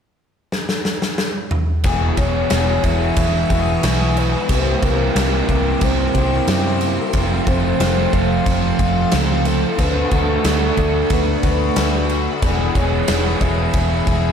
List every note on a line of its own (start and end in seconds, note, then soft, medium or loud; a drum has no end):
0.52 snare medium
0.69 snare medium
0.85 snare medium
1.02 snare medium
1.18 snare medium
1.51 mid tom medium
1.84 2.09 E1 medium
1.84 2.51 E2 medium
1.84 2.51 B2 medium
1.84 2.19 E3 loud
1.84 2.17 G#3 loud
1.84 2.17 B3 medium
1.84 4.49 E4 medium
1.84 2.15 G#4 loud
1.84 4.47 B4 medium
1.84 7.10 E5 medium
1.84 4.47 G#5 medium
1.84 4.47 C#6 medium
1.84 kick loud
1.84 crash medium
2.17 2.43 E1 medium
2.17 2.50 E3 medium
2.17 2.50 G#3 medium
2.17 2.51 B3 medium
2.17 2.51 G#4 medium
2.17 2.86 C#5 loud
2.17 kick medium
2.17 crash medium
2.50 2.76 E1 loud
2.50 2.86 E3 medium
2.50 2.84 G#3 medium
2.50 2.84 B3 medium
2.50 2.83 G#4 medium
2.50 snare loud
2.50 crash medium
2.84 3.09 E1 medium
2.84 3.51 E3 medium
2.84 3.50 G#3 medium
2.84 3.49 B3 medium
2.84 3.48 G#4 medium
2.84 3.50 E5 loud
2.84 kick medium
2.84 crash medium
3.16 3.42 E1 medium
3.16 kick loud
3.16 crash medium
3.49 3.75 E1 medium
3.49 3.82 E3 medium
3.49 3.83 G#3 medium
3.49 3.83 B3 medium
3.49 3.84 G#4 medium
3.49 4.19 E5 loud
3.49 kick medium
3.49 crash medium
3.83 4.34 B1 medium
3.83 4.48 E3 medium
3.83 4.48 G#3 medium
3.83 4.48 B3 medium
3.83 4.49 G#4 medium
3.83 snare loud
3.83 crash medium
4.17 4.52 B4 loud
4.17 crash medium
4.49 4.75 C2 medium
4.49 5.16 C3 medium
4.49 5.14 G3 medium
4.49 4.84 A#3 loud
4.49 4.83 E4 medium
4.49 4.81 G4 loud
4.49 7.12 A#4 medium
4.49 4.85 C5 loud
4.49 7.13 G5 medium
4.49 9.75 C6 medium
4.49 kick loud
4.49 crash medium
4.82 5.08 C2 medium
4.82 5.15 A#3 medium
4.82 5.16 E4 medium
4.82 5.17 G4 medium
4.82 5.50 A#4 medium
4.82 kick medium
4.82 crash medium
5.15 5.41 C2 loud
5.15 5.82 G3 medium
5.15 5.50 A#3 medium
5.15 5.49 E4 medium
5.15 5.48 G4 medium
5.15 snare loud
5.15 crash medium
5.49 5.74 C2 medium
5.49 6.16 A#3 medium
5.49 6.15 E4 medium
5.49 6.13 G4 medium
5.49 5.85 A#4 medium
5.49 kick medium
5.49 crash medium
5.81 6.07 C2 loud
5.81 6.82 C5 medium
5.81 kick loud
5.81 crash medium
6.15 6.40 C2 medium
6.15 6.48 A#3 medium
6.15 6.48 E4 medium
6.15 6.49 G4 medium
6.15 kick medium
6.15 crash medium
6.47 6.98 F#2 medium
6.47 7.12 G3 medium
6.47 7.13 A#3 medium
6.47 7.13 E4 medium
6.47 7.14 G4 medium
6.47 snare loud
6.47 crash medium
6.81 crash medium
7.13 7.39 F1 medium
7.13 7.80 F2 medium
7.13 7.81 C3 medium
7.13 7.48 F3 medium
7.13 7.48 A3 medium
7.13 7.47 C4 loud
7.13 7.46 F4 loud
7.13 12.39 A4 medium
7.13 9.76 C5 medium
7.13 9.76 F5 medium
7.13 kick loud
7.13 crash medium
7.47 7.72 F1 medium
7.47 7.79 F3 medium
7.47 7.81 A3 medium
7.47 7.81 C4 medium
7.47 7.82 F4 medium
7.47 8.15 C5 loud
7.47 kick medium
7.47 crash medium
7.80 8.05 F1 medium
7.80 8.14 F3 medium
7.80 8.15 A3 medium
7.80 8.13 C4 loud
7.80 8.12 F4 medium
7.80 snare loud
7.80 crash medium
8.13 8.38 F1 medium
8.13 8.81 F3 medium
8.13 8.79 A3 medium
8.13 8.79 C4 medium
8.13 8.78 F4 medium
8.13 8.80 F5 loud
8.13 kick medium
8.13 crash medium
8.46 8.71 F1 medium
8.46 kick loud
8.46 crash medium
8.79 9.04 F1 medium
8.79 9.11 F3 medium
8.79 9.12 A3 medium
8.79 9.13 C4 medium
8.79 9.14 F4 medium
8.79 9.48 F5 loud
8.79 kick medium
8.79 crash medium
9.11 9.63 C#2 loud
9.11 9.77 F3 medium
9.11 9.77 A3 medium
9.11 9.78 C4 medium
9.11 9.78 F4 medium
9.11 snare loud
9.11 crash medium
9.45 9.82 A4 medium
9.45 crash medium
9.77 10.03 D2 medium
9.77 10.43 D3 medium
9.77 10.12 A3 medium
9.77 10.11 D4 loud
9.77 10.10 F#4 loud
9.77 10.15 B4 loud
9.77 12.40 D5 medium
9.77 12.40 F#5 medium
9.77 12.40 B5 medium
9.77 kick loud
9.77 crash medium
10.11 10.37 D2 medium
10.11 10.44 A3 medium
10.11 10.44 D4 medium
10.11 10.45 F#4 medium
10.11 10.78 A4 loud
10.11 kick medium
10.11 crash medium
10.44 10.69 D2 loud
10.44 11.10 D3 medium
10.44 10.78 A3 medium
10.44 10.77 D4 medium
10.44 10.76 F#4 medium
10.44 snare loud
10.44 crash medium
10.77 11.02 D2 medium
10.77 11.45 A3 medium
10.77 11.44 D4 medium
10.77 11.42 F#4 medium
10.77 11.15 A4 medium
10.77 kick medium
10.77 crash medium
11.10 11.36 D2 medium
11.10 12.11 B4 medium
11.10 kick loud
11.10 crash medium
11.43 11.69 D2 medium
11.43 11.77 A3 medium
11.43 11.77 D4 medium
11.43 11.78 F#4 medium
11.43 kick medium
11.43 crash medium
11.76 12.27 D2 medium
11.76 12.41 D3 medium
11.76 12.41 A3 medium
11.76 12.42 D4 medium
11.76 12.42 F#4 medium
11.76 snare loud
11.76 crash medium
12.09 crash medium
12.42 12.68 E1 medium
12.42 13.09 E2 loud
12.42 13.09 B2 loud
12.42 12.78 E3 medium
12.42 12.76 G#3 medium
12.42 12.75 B3 medium
12.42 14.32 G#4 medium
12.42 12.74 G#4 medium
12.42 14.32 C#5 medium
12.42 14.32 E5 medium
12.42 14.32 B5 medium
12.42 kick loud
12.42 crash medium
12.75 13.00 E1 medium
12.75 13.08 E3 medium
12.75 13.08 G#3 medium
12.75 13.09 B3 medium
12.75 13.10 G#4 medium
12.75 13.43 C#5 loud
12.75 kick medium
12.75 crash medium
13.08 13.34 E1 loud
13.08 13.43 E3 medium
13.08 13.41 G#3 medium
13.08 13.40 B3 medium
13.08 13.40 G#4 medium
13.08 snare loud
13.08 crash medium
13.41 13.66 E1 medium
13.41 14.08 E3 medium
13.41 14.07 G#3 medium
13.41 14.06 B3 medium
13.41 14.06 G#4 medium
13.41 14.06 E5 loud
13.41 kick medium
13.41 crash medium
13.73 13.99 E1 medium
13.73 kick loud
13.73 crash medium
14.07 14.32 E1 medium
14.07 14.32 E3 medium
14.07 14.32 G#3 medium
14.07 14.32 B3 medium
14.07 14.32 G#4 medium
14.07 14.32 E5 loud
14.07 kick medium
14.07 crash medium